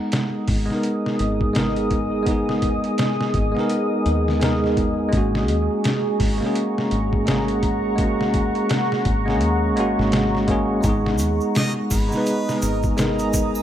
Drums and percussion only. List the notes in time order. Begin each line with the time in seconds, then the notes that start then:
0.12 snare, closed hi-hat
0.48 kick, open hi-hat
0.70 snare
0.83 closed hi-hat
1.06 snare
1.19 closed hi-hat
1.41 kick
1.55 snare, closed hi-hat
1.76 closed hi-hat
1.91 kick, closed hi-hat
2.26 kick, closed hi-hat
2.49 snare
2.62 kick, closed hi-hat
2.84 closed hi-hat
2.98 snare, closed hi-hat
3.21 snare
3.34 kick, closed hi-hat
3.57 snare
3.69 closed hi-hat
4.06 closed hi-hat
4.28 snare
4.41 snare, closed hi-hat
4.64 snare
4.77 kick, closed hi-hat
5.13 kick, closed hi-hat
5.35 snare
5.48 closed hi-hat
5.84 snare, closed hi-hat
6.20 kick, open hi-hat
6.42 snare
6.55 closed hi-hat
6.78 snare
6.91 closed hi-hat
7.13 kick
7.27 snare, closed hi-hat
7.48 closed hi-hat
7.63 kick, closed hi-hat
7.98 kick, closed hi-hat
8.21 snare
8.34 kick, closed hi-hat
8.55 closed hi-hat
8.69 snare, closed hi-hat
8.92 snare
9.05 kick, closed hi-hat
9.28 snare
9.41 closed hi-hat
9.77 closed hi-hat
9.99 snare
10.12 snare, closed hi-hat
10.35 snare
10.48 kick, closed hi-hat
10.83 kick, closed hi-hat, shaker
11.06 snare
11.18 closed hi-hat, shaker
11.41 shaker
11.55 snare, closed hi-hat, shaker
11.90 kick, open hi-hat, triangle, shaker
12.12 snare, shaker
12.26 closed hi-hat, shaker
12.49 snare, shaker
12.62 closed hi-hat, shaker
12.83 kick, shaker
12.98 snare, closed hi-hat, shaker
13.19 closed hi-hat, shaker
13.33 kick, closed hi-hat, shaker
13.55 triangle, shaker